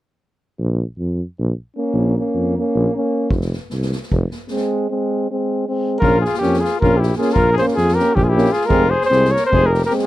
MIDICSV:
0, 0, Header, 1, 7, 480
1, 0, Start_track
1, 0, Tempo, 386100
1, 735, Time_signature, 7, 3, 24, 8
1, 12512, End_track
2, 0, Start_track
2, 0, Title_t, "Flugelhorn"
2, 0, Program_c, 0, 56
2, 7448, Note_on_c, 0, 70, 91
2, 7711, Note_off_c, 0, 70, 0
2, 7719, Note_on_c, 0, 68, 81
2, 7919, Note_off_c, 0, 68, 0
2, 7927, Note_on_c, 0, 67, 85
2, 8186, Note_on_c, 0, 68, 74
2, 8205, Note_off_c, 0, 67, 0
2, 8440, Note_off_c, 0, 68, 0
2, 8454, Note_on_c, 0, 70, 80
2, 8666, Note_on_c, 0, 67, 67
2, 8684, Note_off_c, 0, 70, 0
2, 8905, Note_off_c, 0, 67, 0
2, 8919, Note_on_c, 0, 68, 81
2, 9112, Note_on_c, 0, 70, 92
2, 9131, Note_off_c, 0, 68, 0
2, 9414, Note_off_c, 0, 70, 0
2, 9423, Note_on_c, 0, 72, 86
2, 9522, Note_off_c, 0, 72, 0
2, 9638, Note_on_c, 0, 68, 91
2, 9874, Note_on_c, 0, 70, 94
2, 9893, Note_off_c, 0, 68, 0
2, 10134, Note_on_c, 0, 67, 90
2, 10152, Note_off_c, 0, 70, 0
2, 10238, Note_on_c, 0, 68, 68
2, 10256, Note_off_c, 0, 67, 0
2, 10309, Note_on_c, 0, 67, 90
2, 10327, Note_off_c, 0, 68, 0
2, 10600, Note_on_c, 0, 68, 86
2, 10619, Note_off_c, 0, 67, 0
2, 10764, Note_on_c, 0, 70, 94
2, 10783, Note_off_c, 0, 68, 0
2, 11060, Note_on_c, 0, 72, 84
2, 11079, Note_off_c, 0, 70, 0
2, 11241, Note_off_c, 0, 72, 0
2, 11248, Note_on_c, 0, 72, 104
2, 11572, Note_on_c, 0, 73, 92
2, 11591, Note_off_c, 0, 72, 0
2, 11749, Note_off_c, 0, 73, 0
2, 11757, Note_on_c, 0, 72, 102
2, 12013, Note_on_c, 0, 70, 86
2, 12031, Note_off_c, 0, 72, 0
2, 12235, Note_off_c, 0, 70, 0
2, 12243, Note_on_c, 0, 70, 90
2, 12346, Note_off_c, 0, 70, 0
2, 12466, Note_on_c, 0, 68, 89
2, 12512, Note_off_c, 0, 68, 0
2, 12512, End_track
3, 0, Start_track
3, 0, Title_t, "Trumpet"
3, 0, Program_c, 1, 56
3, 7468, Note_on_c, 1, 65, 88
3, 7734, Note_off_c, 1, 65, 0
3, 7787, Note_on_c, 1, 65, 75
3, 7966, Note_off_c, 1, 65, 0
3, 7973, Note_on_c, 1, 61, 65
3, 8218, Note_on_c, 1, 65, 71
3, 8237, Note_off_c, 1, 61, 0
3, 8456, Note_off_c, 1, 65, 0
3, 8470, Note_on_c, 1, 65, 79
3, 8702, Note_on_c, 1, 64, 64
3, 8721, Note_off_c, 1, 65, 0
3, 8913, Note_off_c, 1, 64, 0
3, 8920, Note_on_c, 1, 65, 72
3, 9095, Note_off_c, 1, 65, 0
3, 9095, Note_on_c, 1, 65, 81
3, 9353, Note_off_c, 1, 65, 0
3, 9361, Note_on_c, 1, 68, 77
3, 9474, Note_off_c, 1, 68, 0
3, 9597, Note_on_c, 1, 65, 60
3, 9888, Note_on_c, 1, 67, 70
3, 9907, Note_off_c, 1, 65, 0
3, 10115, Note_on_c, 1, 61, 70
3, 10133, Note_off_c, 1, 67, 0
3, 10231, Note_on_c, 1, 65, 64
3, 10249, Note_off_c, 1, 61, 0
3, 10304, Note_on_c, 1, 64, 78
3, 10323, Note_off_c, 1, 65, 0
3, 10593, Note_on_c, 1, 65, 79
3, 10611, Note_off_c, 1, 64, 0
3, 10791, Note_off_c, 1, 65, 0
3, 10791, Note_on_c, 1, 65, 92
3, 11074, Note_on_c, 1, 68, 83
3, 11093, Note_off_c, 1, 65, 0
3, 11307, Note_off_c, 1, 68, 0
3, 11312, Note_on_c, 1, 68, 72
3, 11602, Note_on_c, 1, 70, 66
3, 11621, Note_off_c, 1, 68, 0
3, 11822, Note_off_c, 1, 70, 0
3, 11840, Note_on_c, 1, 68, 92
3, 12100, Note_on_c, 1, 67, 72
3, 12118, Note_off_c, 1, 68, 0
3, 12251, Note_off_c, 1, 67, 0
3, 12259, Note_on_c, 1, 67, 69
3, 12359, Note_off_c, 1, 67, 0
3, 12512, End_track
4, 0, Start_track
4, 0, Title_t, "Euphonium"
4, 0, Program_c, 2, 58
4, 2193, Note_on_c, 2, 61, 55
4, 2688, Note_off_c, 2, 61, 0
4, 2704, Note_on_c, 2, 61, 50
4, 3201, Note_off_c, 2, 61, 0
4, 3211, Note_on_c, 2, 61, 49
4, 3662, Note_off_c, 2, 61, 0
4, 3670, Note_on_c, 2, 61, 64
4, 4088, Note_off_c, 2, 61, 0
4, 5590, Note_on_c, 2, 60, 52
4, 6070, Note_off_c, 2, 60, 0
4, 6087, Note_on_c, 2, 60, 49
4, 6576, Note_off_c, 2, 60, 0
4, 6605, Note_on_c, 2, 60, 53
4, 7055, Note_off_c, 2, 60, 0
4, 7063, Note_on_c, 2, 60, 55
4, 7467, Note_off_c, 2, 60, 0
4, 7484, Note_on_c, 2, 61, 54
4, 7683, Note_off_c, 2, 61, 0
4, 7979, Note_on_c, 2, 61, 67
4, 8179, Note_off_c, 2, 61, 0
4, 8487, Note_on_c, 2, 61, 58
4, 8669, Note_off_c, 2, 61, 0
4, 8940, Note_on_c, 2, 61, 57
4, 9137, Note_off_c, 2, 61, 0
4, 9432, Note_on_c, 2, 61, 52
4, 9633, Note_off_c, 2, 61, 0
4, 9930, Note_on_c, 2, 61, 56
4, 10119, Note_off_c, 2, 61, 0
4, 10398, Note_on_c, 2, 61, 69
4, 10565, Note_off_c, 2, 61, 0
4, 10807, Note_on_c, 2, 60, 69
4, 11011, Note_off_c, 2, 60, 0
4, 11305, Note_on_c, 2, 60, 65
4, 11509, Note_off_c, 2, 60, 0
4, 11810, Note_on_c, 2, 60, 52
4, 11997, Note_off_c, 2, 60, 0
4, 12308, Note_on_c, 2, 60, 63
4, 12501, Note_off_c, 2, 60, 0
4, 12512, End_track
5, 0, Start_track
5, 0, Title_t, "Trombone"
5, 0, Program_c, 3, 57
5, 2204, Note_on_c, 3, 58, 53
5, 2693, Note_off_c, 3, 58, 0
5, 2710, Note_on_c, 3, 58, 53
5, 3200, Note_off_c, 3, 58, 0
5, 3207, Note_on_c, 3, 58, 60
5, 3674, Note_off_c, 3, 58, 0
5, 3687, Note_on_c, 3, 58, 56
5, 4097, Note_off_c, 3, 58, 0
5, 5590, Note_on_c, 3, 56, 60
5, 6070, Note_off_c, 3, 56, 0
5, 6093, Note_on_c, 3, 56, 59
5, 6578, Note_off_c, 3, 56, 0
5, 6595, Note_on_c, 3, 56, 52
5, 7050, Note_off_c, 3, 56, 0
5, 7069, Note_on_c, 3, 56, 45
5, 7469, Note_off_c, 3, 56, 0
5, 7476, Note_on_c, 3, 58, 53
5, 7676, Note_off_c, 3, 58, 0
5, 7970, Note_on_c, 3, 58, 52
5, 8172, Note_off_c, 3, 58, 0
5, 8469, Note_on_c, 3, 58, 56
5, 8655, Note_off_c, 3, 58, 0
5, 8924, Note_on_c, 3, 58, 63
5, 9124, Note_off_c, 3, 58, 0
5, 9440, Note_on_c, 3, 58, 67
5, 9639, Note_off_c, 3, 58, 0
5, 9927, Note_on_c, 3, 58, 56
5, 10116, Note_off_c, 3, 58, 0
5, 10400, Note_on_c, 3, 58, 68
5, 10568, Note_off_c, 3, 58, 0
5, 10794, Note_on_c, 3, 56, 78
5, 11000, Note_off_c, 3, 56, 0
5, 11327, Note_on_c, 3, 56, 59
5, 11527, Note_off_c, 3, 56, 0
5, 11834, Note_on_c, 3, 56, 55
5, 12017, Note_off_c, 3, 56, 0
5, 12318, Note_on_c, 3, 56, 66
5, 12509, Note_off_c, 3, 56, 0
5, 12512, End_track
6, 0, Start_track
6, 0, Title_t, "Tuba"
6, 0, Program_c, 4, 58
6, 730, Note_on_c, 4, 34, 78
6, 1010, Note_off_c, 4, 34, 0
6, 1226, Note_on_c, 4, 41, 52
6, 1508, Note_off_c, 4, 41, 0
6, 1732, Note_on_c, 4, 34, 84
6, 1876, Note_off_c, 4, 34, 0
6, 2399, Note_on_c, 4, 34, 79
6, 2682, Note_off_c, 4, 34, 0
6, 2909, Note_on_c, 4, 41, 53
6, 3192, Note_off_c, 4, 41, 0
6, 3420, Note_on_c, 4, 34, 93
6, 3563, Note_off_c, 4, 34, 0
6, 4108, Note_on_c, 4, 29, 69
6, 4385, Note_off_c, 4, 29, 0
6, 4625, Note_on_c, 4, 36, 56
6, 4899, Note_off_c, 4, 36, 0
6, 5127, Note_on_c, 4, 29, 92
6, 5264, Note_off_c, 4, 29, 0
6, 7476, Note_on_c, 4, 34, 85
6, 7751, Note_off_c, 4, 34, 0
6, 7983, Note_on_c, 4, 41, 63
6, 8257, Note_off_c, 4, 41, 0
6, 8475, Note_on_c, 4, 34, 98
6, 8844, Note_off_c, 4, 34, 0
6, 9158, Note_on_c, 4, 34, 88
6, 9431, Note_off_c, 4, 34, 0
6, 9656, Note_on_c, 4, 41, 74
6, 9930, Note_off_c, 4, 41, 0
6, 10141, Note_on_c, 4, 34, 95
6, 10511, Note_off_c, 4, 34, 0
6, 10830, Note_on_c, 4, 29, 83
6, 11104, Note_off_c, 4, 29, 0
6, 11329, Note_on_c, 4, 36, 72
6, 11603, Note_off_c, 4, 36, 0
6, 11836, Note_on_c, 4, 29, 93
6, 12201, Note_off_c, 4, 29, 0
6, 12512, End_track
7, 0, Start_track
7, 0, Title_t, "Drums"
7, 4109, Note_on_c, 9, 36, 78
7, 4233, Note_off_c, 9, 36, 0
7, 4237, Note_on_c, 9, 38, 22
7, 4362, Note_off_c, 9, 38, 0
7, 4384, Note_on_c, 9, 38, 23
7, 4508, Note_off_c, 9, 38, 0
7, 4596, Note_on_c, 9, 38, 26
7, 4721, Note_off_c, 9, 38, 0
7, 4743, Note_on_c, 9, 38, 25
7, 4867, Note_off_c, 9, 38, 0
7, 4874, Note_on_c, 9, 38, 23
7, 4999, Note_off_c, 9, 38, 0
7, 5002, Note_on_c, 9, 38, 17
7, 5116, Note_on_c, 9, 36, 64
7, 5126, Note_off_c, 9, 38, 0
7, 5241, Note_off_c, 9, 36, 0
7, 5357, Note_on_c, 9, 38, 26
7, 5481, Note_off_c, 9, 38, 0
7, 5564, Note_on_c, 9, 38, 23
7, 5675, Note_off_c, 9, 38, 0
7, 5675, Note_on_c, 9, 38, 21
7, 5799, Note_off_c, 9, 38, 0
7, 7484, Note_on_c, 9, 36, 73
7, 7608, Note_off_c, 9, 36, 0
7, 7767, Note_on_c, 9, 38, 25
7, 7879, Note_off_c, 9, 38, 0
7, 7879, Note_on_c, 9, 38, 28
7, 7982, Note_off_c, 9, 38, 0
7, 7982, Note_on_c, 9, 38, 25
7, 8106, Note_off_c, 9, 38, 0
7, 8119, Note_on_c, 9, 38, 26
7, 8244, Note_off_c, 9, 38, 0
7, 8258, Note_on_c, 9, 38, 23
7, 8383, Note_off_c, 9, 38, 0
7, 8483, Note_on_c, 9, 36, 75
7, 8607, Note_off_c, 9, 36, 0
7, 8735, Note_on_c, 9, 38, 30
7, 8857, Note_off_c, 9, 38, 0
7, 8857, Note_on_c, 9, 38, 18
7, 8967, Note_off_c, 9, 38, 0
7, 8967, Note_on_c, 9, 38, 27
7, 9062, Note_off_c, 9, 38, 0
7, 9062, Note_on_c, 9, 38, 21
7, 9148, Note_on_c, 9, 36, 87
7, 9186, Note_off_c, 9, 38, 0
7, 9273, Note_off_c, 9, 36, 0
7, 9420, Note_on_c, 9, 38, 28
7, 9541, Note_off_c, 9, 38, 0
7, 9541, Note_on_c, 9, 38, 25
7, 9661, Note_off_c, 9, 38, 0
7, 9661, Note_on_c, 9, 38, 29
7, 9785, Note_off_c, 9, 38, 0
7, 9795, Note_on_c, 9, 38, 26
7, 9919, Note_off_c, 9, 38, 0
7, 9931, Note_on_c, 9, 38, 23
7, 10055, Note_off_c, 9, 38, 0
7, 10154, Note_on_c, 9, 36, 61
7, 10278, Note_off_c, 9, 36, 0
7, 10416, Note_on_c, 9, 38, 31
7, 10500, Note_off_c, 9, 38, 0
7, 10500, Note_on_c, 9, 38, 24
7, 10599, Note_off_c, 9, 38, 0
7, 10599, Note_on_c, 9, 38, 25
7, 10702, Note_off_c, 9, 38, 0
7, 10702, Note_on_c, 9, 38, 22
7, 10820, Note_on_c, 9, 36, 93
7, 10826, Note_off_c, 9, 38, 0
7, 10945, Note_off_c, 9, 36, 0
7, 11205, Note_on_c, 9, 38, 30
7, 11329, Note_off_c, 9, 38, 0
7, 11336, Note_on_c, 9, 38, 29
7, 11460, Note_off_c, 9, 38, 0
7, 11494, Note_on_c, 9, 38, 28
7, 11618, Note_off_c, 9, 38, 0
7, 11637, Note_on_c, 9, 38, 26
7, 11761, Note_off_c, 9, 38, 0
7, 11845, Note_on_c, 9, 36, 69
7, 11969, Note_off_c, 9, 36, 0
7, 12108, Note_on_c, 9, 38, 31
7, 12205, Note_off_c, 9, 38, 0
7, 12205, Note_on_c, 9, 38, 24
7, 12306, Note_off_c, 9, 38, 0
7, 12306, Note_on_c, 9, 38, 24
7, 12411, Note_off_c, 9, 38, 0
7, 12411, Note_on_c, 9, 38, 22
7, 12512, Note_off_c, 9, 38, 0
7, 12512, End_track
0, 0, End_of_file